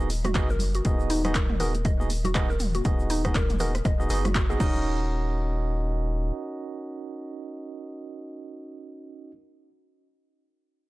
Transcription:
Already playing: sub bass D#1
0.10 open hi-hat, muted conga, shaker
0.24 synth pluck F#4, cross-stick, closed hi-hat, mid tom, low conga, shaker
0.35 sub bass F#1, tine electric piano B3 D#4 F#4 G#4 D#5, kick, clap, closed hi-hat, shaker
0.50 synth pluck A#4, muted conga, shaker
0.59 open hi-hat, low conga, shaker
0.74 synth pluck F#4, closed hi-hat, shaker
0.85 sub bass D#1, tine electric piano B3 D#4 F#4 G#4 D#5, kick, closed hi-hat, muted conga, high conga, shaker
1.00 shaker
1.10 synth pluck D#4, open hi-hat, shaker
1.25 tine electric piano B3 D#4 F#4 G#4 D#5, cross-stick, closed hi-hat, low conga, shaker
1.35 synth pluck A#4, kick, clap, closed hi-hat, muted conga, shaker
1.50 mid tom, high conga
1.60 tine electric piano B3 D#4 F#4 G#4 D#5, synth pluck A#4, open hi-hat, shaker
1.75 closed hi-hat, muted conga, shaker
1.85 synth pluck D#5, kick, closed hi-hat, shaker
1.99 tine electric piano B3 D#4 F#4 G#4 D#5, high conga, shaker
2.10 open hi-hat, muted conga, shaker
2.24 synth pluck F#4, closed hi-hat, low conga, shaker
2.35 tine electric piano B3 D#4 F#4 G#4 D#5, kick, cross-stick, clap, closed hi-hat, low conga, shaker
2.50 synth pluck A#4, muted conga, shaker
2.60 mid tom, open hi-hat, shaker
2.75 synth pluck F#4, closed hi-hat, high conga, shaker
2.85 sub bass D#1, tine electric piano B3 D#4 F#4 G#4 D#5, kick, closed hi-hat, muted conga, high conga, shaker
3.00 shaker
3.10 synth pluck D#4, open hi-hat, shaker
3.25 tine electric piano B3 D#4 F#4 G#4 D#5, kick, cross-stick, closed hi-hat, high conga, low conga, shaker
3.35 synth pluck A#4, kick, clap, closed hi-hat, muted conga, shaker
3.50 closed hi-hat, mid tom, high conga, shaker
3.60 tine electric piano B3 D#4 F#4 G#4 D#5, synth pluck A#4, open hi-hat, shaker
3.75 cross-stick, closed hi-hat, muted conga, shaker
3.85 sub bass D#1, synth pluck D#5, kick, cross-stick, closed hi-hat, low conga, shaker
4.00 tine electric piano B3 D#4 F#4 G#4 D#5, shaker
4.09 sub bass F#1, tine electric piano B3 D#4 F#4 G#4 D#5, synth pluck G#4, open hi-hat, muted conga, high conga, shaker
4.25 synth pluck F#4, cross-stick, closed hi-hat, mid tom, low conga, shaker
4.35 synth pluck F#4, kick, clap, closed hi-hat, shaker
4.50 tine electric piano B3 D#4 F#4 G#4 D#5, synth pluck G#4, muted conga, shaker
4.60 sub bass D#1, tine electric piano C#4 D#4 F#4 A#4 D#5, synth pluck D#4, kick, crash, low conga, shaker
4.75 shaker

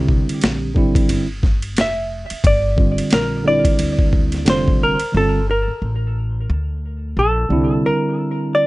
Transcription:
Already playing: upright bass C2, tine electric piano D3 G3 C4 E4 G4, hollow-body jazz guitar G4
0.09 kick
0.29 muted upright bass stroke, ride
0.41 upright bass A#1, snare, hi-hat pedal, ride
0.74 tine electric piano D3 G3 C4 E4, kick
0.95 muted upright bass stroke, kick, ride
1.09 upright bass G1, ride
1.43 kick, snare
1.62 ride
1.77 upright bass F1, snare, hi-hat pedal, ride
1.81 hollow-body jazz guitar E5
2.30 muted upright bass stroke, ride
2.44 upright bass G1, hollow-body jazz guitar D5, kick, ride
2.76 tine electric piano D3 G3 C4 F4, kick
2.98 muted upright bass stroke, ride
3.10 upright bass A#1, hollow-body jazz guitar A#4, snare, hi-hat pedal, ride
3.44 tine electric piano D3 G3 C4 E4, hollow-body jazz guitar D5
3.65 muted upright bass stroke, kick, ride
3.79 upright bass D2, ride
3.99 kick
4.13 kick
4.32 snare, ride
4.45 upright bass F1, tine electric piano D3 G3 C4 F4, snare, hi-hat pedal, ride
4.50 hollow-body jazz guitar C5
4.68 kick
4.83 hollow-body jazz guitar A#4
5.00 muted upright bass stroke, ride
5.12 upright bass G1, tine electric piano D3 G3 C4 F4
5.17 hollow-body jazz guitar A4
5.51 hollow-body jazz guitar A#4
5.68 muted upright bass stroke
5.82 upright bass A1
6.50 upright bass D2
7.17 upright bass A#1, hollow-body jazz guitar A4
7.49 upright bass C2, tine electric piano D3 G3 C4 E4
7.86 hollow-body jazz guitar A#4
8.55 hollow-body jazz guitar D5

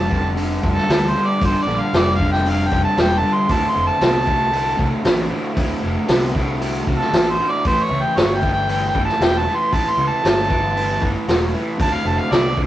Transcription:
Already playing: fingered electric bass F1, harmonica A5
0.10 overdriven electric guitar G2 D3, kick
0.36 overdriven electric guitar G2 D3, open hi-hat
0.62 fingered electric bass F1, overdriven electric guitar G2 D3, kick
0.74 harmonica A4, snare
0.89 fingered electric bass D2, overdriven electric guitar G2 E3, snare, open hi-hat
1.09 harmonica C5
1.15 overdriven electric guitar G2 D3
1.27 harmonica D5
1.41 fingered electric bass G1, overdriven electric guitar G2 D3, harmonica C5, kick, open hi-hat
1.62 harmonica D5
1.67 fingered electric bass A#1, overdriven electric guitar G2 D3
1.80 harmonica F5
1.93 fingered electric bass F1, overdriven electric guitar G2 E3, snare, open hi-hat
1.98 harmonica D5
2.16 overdriven electric guitar G2 D3, harmonica F5
2.20 kick
2.32 harmonica G5, snare
2.45 overdriven electric guitar G2 D3, harmonica F5, open hi-hat
2.67 harmonica G5
2.72 fingered electric bass F1, overdriven electric guitar G2 D3, kick
2.84 harmonica A5
2.97 fingered electric bass E1, overdriven electric guitar G2 E3, snare, open hi-hat
3.01 harmonica G5
3.18 harmonica A5
3.23 overdriven electric guitar G2 D3
3.34 harmonica C6
3.48 fingered electric bass D1, overdriven electric guitar D2 A2, harmonica A5, kick, open hi-hat
3.69 harmonica C6
3.74 fingered electric bass F1, overdriven electric guitar D2 A2
3.87 harmonica A5
4.00 fingered electric bass C2, overdriven electric guitar D2 B2, snare, open hi-hat
4.25 overdriven electric guitar D2 A2, kick
4.52 overdriven electric guitar D2 A2, open hi-hat
4.77 fingered electric bass C2, overdriven electric guitar D2 A2, kick
5.04 fingered electric bass A1, overdriven electric guitar D2 B2, snare, open hi-hat
5.29 overdriven electric guitar D2 A2
5.55 fingered electric bass D1, overdriven electric guitar D2 A2, kick, open hi-hat
5.81 fingered electric bass F1, overdriven electric guitar D2 A2
6.07 fingered electric bass C2, overdriven electric guitar D2 B2, snare, open hi-hat
6.34 overdriven electric guitar D2 A2, kick
6.60 overdriven electric guitar D2 A2, open hi-hat
6.87 fingered electric bass C2, overdriven electric guitar D2 A2, kick
6.96 harmonica A4
7.01 snare
7.12 fingered electric bass A1, overdriven electric guitar D2 B2, snare, open hi-hat
7.31 harmonica C5
7.39 overdriven electric guitar D2 A2
7.50 harmonica D5
7.64 fingered electric bass A1, overdriven electric guitar A2 E3, harmonica C5, kick, open hi-hat
7.84 harmonica C#5
7.90 fingered electric bass C#2, overdriven electric guitar A2 E3
8.02 harmonica G5
8.16 fingered electric bass G1, overdriven electric guitar A2 F#3, harmonica C#5, snare, open hi-hat
8.36 harmonica G5
8.42 overdriven electric guitar A2 E3, kick
8.53 harmonica G5
8.69 overdriven electric guitar A2 E3, harmonica G5, open hi-hat
8.88 harmonica G5
8.95 fingered electric bass G1, overdriven electric guitar A2 E3, kick
9.05 harmonica A5, snare
9.20 fingered electric bass E1, overdriven electric guitar A2 F#3, harmonica G5, snare, open hi-hat
9.38 harmonica A5
9.47 overdriven electric guitar A2 E3
9.56 harmonica C6
9.72 fingered electric bass A1, overdriven electric guitar A2 E3, harmonica A5, kick, open hi-hat
9.89 harmonica C6
9.97 fingered electric bass C#2, overdriven electric guitar A2 E3
10.08 harmonica A5
10.23 fingered electric bass G1, overdriven electric guitar A2 F#3, snare, open hi-hat
10.48 overdriven electric guitar A2 E3, kick
10.75 overdriven electric guitar A2 E3, open hi-hat
11.01 fingered electric bass G1, overdriven electric guitar A2 E3, kick
11.27 fingered electric bass E1, overdriven electric guitar A2 F#3, snare, open hi-hat
11.54 overdriven electric guitar A2 E3
11.78 fingered electric bass D1, overdriven electric guitar D2 A2, harmonica A5, kick, open hi-hat
11.94 harmonica F5
12.04 fingered electric bass F1, overdriven electric guitar D2 A2
12.08 harmonica A5
12.20 harmonica F5
12.31 fingered electric bass C2, overdriven electric guitar D2 B2, harmonica D5, snare, open hi-hat
12.56 overdriven electric guitar D2 A2, kick

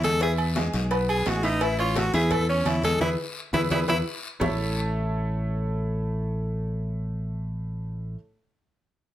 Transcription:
Already playing: fingered electric bass E2
0.03 grand piano G#3 G#4 G#5, tenor saxophone A4, cowbell, high conga, short guiro
0.21 grand piano E3 E4 E5, tenor saxophone G#4, cowbell, high conga, low agogo, long guiro
0.38 high conga, low agogo
0.56 grand piano G#3 G#4 G#5, cowbell, high conga, short guiro
0.74 fingered electric bass B1, cowbell, short guiro
0.91 grand piano B3 B4 B5, cowbell, high conga, low agogo, long guiro
1.09 tenor saxophone G#4, high conga, low agogo
1.26 fingered electric bass A1, grand piano G#3 G#4 G#5, tenor saxophone F#4, cowbell, high conga, low timbale, low agogo, short guiro
1.43 grand piano E3 E4 E5, tenor saxophone D#4, cowbell, short guiro
1.61 tenor saxophone E4, cowbell, low agogo, long guiro
1.79 grand piano C#4 C#5 C#6, tenor saxophone F4, high conga, low agogo
1.96 grand piano A3 A4 A5, tenor saxophone F#4, cowbell, high conga, low agogo, short guiro
2.13 fingered electric bass E2, grand piano E3 E4 E5, tenor saxophone G#4, cowbell, short guiro
2.31 tenor saxophone A4, cowbell, high conga, low conga, low agogo, long guiro
2.48 grand piano C#4 C#5 C#6, tenor saxophone C#4, high conga
2.65 fingered electric bass E2, tenor saxophone E4, cowbell, high conga, low agogo, short guiro
2.83 grand piano G#3 G#4 G#5, tenor saxophone A4, cowbell, high conga, short guiro
3.00 fingered electric bass E2, tenor saxophone E4, grand piano E4 G#4 B4, cowbell, high conga, high timbale, long guiro
3.53 fingered electric bass E2, tenor saxophone E4, grand piano E4 G#4 B4, cowbell, high conga, high timbale, long guiro
3.70 fingered electric bass E2, grand piano E4 G#4 B4, tenor saxophone E4, cowbell, high conga, high timbale, long guiro
3.88 fingered electric bass E2, grand piano E4 G#4 B4, tenor saxophone E4, cowbell, high conga, high timbale, long guiro
4.40 fingered electric bass A1, grand piano A3 E4 A4 C#5 E5 A5, low bongo, low conga, low timbale, long guiro

